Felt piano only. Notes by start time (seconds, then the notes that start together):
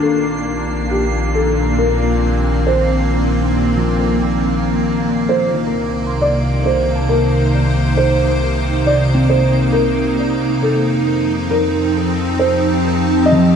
0.02 A4
0.90 G4
1.35 A4
1.78 A#4
2.67 C5
5.29 C5
6.21 D5
6.66 C5
7.09 A#4
7.97 C5
8.87 D5
9.29 C5
9.72 A#4
10.62 A4
11.50 A#4
12.39 C5
13.26 D#5